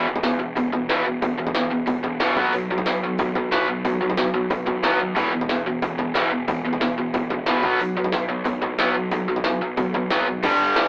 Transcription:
0.08 picked electric bass E1, overdriven electric guitar E2 B2
0.16 kick
0.23 overdriven electric guitar E2 B2, picked electric bass E2, snare, open hi-hat
0.40 picked electric bass E1, overdriven electric guitar E2 B2
0.56 picked electric bass E1, overdriven electric guitar E2 B2, kick, open hi-hat
0.72 picked electric bass E1, overdriven electric guitar E2 B2, kick
0.89 picked electric bass E1, overdriven electric guitar E2 B2 E3, snare, open hi-hat
1.06 picked electric bass E1, overdriven electric guitar E2 B2
1.22 picked electric bass E1, overdriven electric guitar E2 B2, kick, open hi-hat
1.38 picked electric bass E1, overdriven electric guitar E2 B2
1.47 kick
1.55 picked electric bass E1, overdriven electric guitar E2 B2, snare, open hi-hat
1.71 picked electric bass E1, overdriven electric guitar E2 B2
1.87 picked electric bass E1, overdriven electric guitar E2 B2, kick, open hi-hat
2.04 picked electric bass E1, overdriven electric guitar E2 B2, kick
2.20 picked electric bass C#2, overdriven electric guitar E2 B2 E3, snare, open hi-hat
2.37 picked electric bass B1, overdriven electric guitar B2 F#3 B3, kick
2.53 picked electric bass B1, overdriven electric guitar B2 F#3, open hi-hat
2.69 picked electric bass B1, overdriven electric guitar B2 F#3
2.78 kick
2.85 picked electric bass B2, overdriven electric guitar B2 F#3, snare, open hi-hat
3.02 picked electric bass B1, overdriven electric guitar B2 F#3
3.18 picked electric bass B1, overdriven electric guitar B2 F#3, kick, open hi-hat
3.35 picked electric bass B1, overdriven electric guitar B2 F#3, kick
3.51 picked electric bass B1, overdriven electric guitar B2 F#3 B3, snare, open hi-hat
3.68 picked electric bass B1, overdriven electric guitar B2 F#3
3.85 picked electric bass B1, overdriven electric guitar B2 F#3, kick, open hi-hat
4.01 picked electric bass B1, overdriven electric guitar B2 F#3
4.10 kick
4.17 picked electric bass B1, overdriven electric guitar B2 F#3, snare, open hi-hat
4.34 picked electric bass B1, overdriven electric guitar B2 F#3
4.50 picked electric bass B1, overdriven electric guitar B2 F#3, kick, open hi-hat
4.66 picked electric bass B1, overdriven electric guitar B2 F#3, kick
4.83 picked electric bass D#2, overdriven electric guitar B2 F#3 B3, snare, open hi-hat
4.99 overdriven electric guitar B2 F#3
5.16 picked electric bass E1, overdriven electric guitar E2 B2 E3, kick, open hi-hat
5.33 picked electric bass E1, overdriven electric guitar E2 B2
5.41 kick
5.49 overdriven electric guitar E2 B2, picked electric bass E2, snare, open hi-hat
5.66 picked electric bass E1, overdriven electric guitar E2 B2
5.82 picked electric bass E1, overdriven electric guitar E2 B2, kick, open hi-hat
5.98 picked electric bass E1, overdriven electric guitar E2 B2, kick
6.14 picked electric bass E1, overdriven electric guitar E2 B2 E3, snare, open hi-hat
6.31 picked electric bass E1, overdriven electric guitar E2 B2
6.48 picked electric bass E1, overdriven electric guitar E2 B2, kick, open hi-hat
6.65 picked electric bass E1, overdriven electric guitar E2 B2
6.73 kick
6.81 picked electric bass E1, overdriven electric guitar E2 B2, snare, open hi-hat
6.98 picked electric bass E1, overdriven electric guitar E2 B2
7.14 picked electric bass E1, overdriven electric guitar E2 B2, kick, open hi-hat
7.30 picked electric bass E1, overdriven electric guitar E2 B2, kick
7.46 picked electric bass E1, overdriven electric guitar E2 B2 E3, snare, open hi-hat
7.63 picked electric bass B1, overdriven electric guitar B2 F#3 B3, kick
7.80 picked electric bass B1, overdriven electric guitar B2 F#3, open hi-hat
7.96 picked electric bass B1, overdriven electric guitar B2 F#3
8.04 kick
8.12 picked electric bass B2, overdriven electric guitar B2 F#3, snare, open hi-hat
8.29 picked electric bass B1, overdriven electric guitar B2 F#3
8.45 picked electric bass B1, overdriven electric guitar B2 F#3, kick, open hi-hat
8.62 picked electric bass B1, overdriven electric guitar B2 F#3, kick
8.79 picked electric bass B1, overdriven electric guitar B2 F#3 B3, snare, open hi-hat
8.94 picked electric bass B1, overdriven electric guitar B2 F#3
9.11 picked electric bass B1, overdriven electric guitar B2 F#3, kick, open hi-hat
9.28 picked electric bass B1, overdriven electric guitar B2 F#3
9.36 kick
9.44 picked electric bass B1, overdriven electric guitar B2 F#3, snare, open hi-hat
9.61 picked electric bass B1, overdriven electric guitar B2 F#3
9.77 picked electric bass B1, overdriven electric guitar B2 F#3, kick, open hi-hat
9.94 picked electric bass B1, overdriven electric guitar B2 F#3, kick
10.10 picked electric bass G#1, overdriven electric guitar B2 F#3 B3, snare, open hi-hat
10.27 overdriven electric guitar B2 F#3
10.43 picked electric bass G1, overdriven electric guitar G2 D3 G3, kick, crash
10.60 picked electric bass G1, crash
10.76 picked electric bass G1, snare, crash

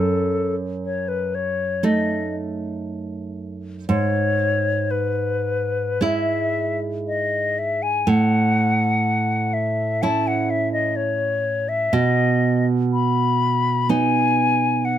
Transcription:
Already playing: nylon-string guitar F#2, flute A4
0.85 flute C#5
1.08 flute B4
1.35 flute C#5
1.83 nylon-string guitar A3 D#4, flute D#5
3.89 nylon-string guitar G#2, flute C#5
4.91 flute B4
6.01 nylon-string guitar G#3 E4, flute E5
7.07 flute D#5
7.59 flute E5
7.83 flute G#5
8.07 nylon-string guitar A2, flute F#5
9.54 flute E5
10.02 nylon-string guitar C#4 E4, flute A5
10.27 flute F#5
10.50 flute E5
10.73 flute D#5
10.96 flute C#5
11.69 flute E5
11.93 nylon-string guitar B2, flute D#5
12.93 flute B5
13.89 nylon-string guitar B3 D#4, flute G#5
14.85 flute F#5

